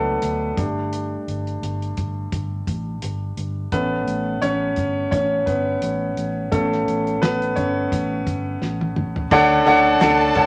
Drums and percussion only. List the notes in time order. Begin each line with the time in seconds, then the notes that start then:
0.22 closed hi-hat
0.57 kick, closed hi-hat
0.93 closed hi-hat
1.28 closed hi-hat
1.47 closed hi-hat
1.63 closed hi-hat
1.82 closed hi-hat
1.97 kick, closed hi-hat
2.32 kick, closed hi-hat
2.67 kick, closed hi-hat
3.02 closed hi-hat
3.37 closed hi-hat
3.72 kick, closed hi-hat
4.08 closed hi-hat
4.42 closed hi-hat
4.76 kick, closed hi-hat
5.12 kick, closed hi-hat
5.47 kick, closed hi-hat
5.82 closed hi-hat
6.17 closed hi-hat
6.52 kick, closed hi-hat
6.72 snare
6.88 closed hi-hat
7.07 closed hi-hat
7.23 snare, closed hi-hat
7.42 closed hi-hat
7.56 kick, closed hi-hat
7.92 kick, closed hi-hat
8.27 kick, closed hi-hat
8.62 snare
8.81 high tom
8.96 mid tom
9.16 floor tom
9.31 kick, crash
9.67 ride
9.86 ride
10.01 snare, clap, ride
10.21 ride
10.35 kick, ride